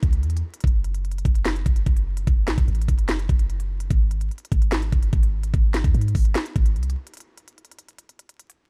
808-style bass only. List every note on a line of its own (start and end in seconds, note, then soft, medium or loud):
0.03 0.25 C#2 loud
0.23 0.42 E2 loud
0.64 1.23 F#1 loud
1.25 1.64 F#1 loud
1.66 1.86 F#1 loud
1.86 2.26 F#1 loud
2.27 2.49 F#1 loud
2.48 2.57 A1 loud
2.58 2.67 F#1 loud
2.68 2.88 A1 loud
2.88 3.28 F#1 loud
3.29 3.88 F#1 loud
3.90 4.30 G#1 loud
4.52 4.91 G#1 loud
4.92 5.12 F#1 loud
5.13 5.52 G#1 loud
5.54 5.83 G#1 loud
5.84 5.94 D#2 loud
5.94 6.14 G#2 loud
6.15 6.35 G#1 loud
6.56 6.78 G#1 loud
6.76 6.96 C2 loud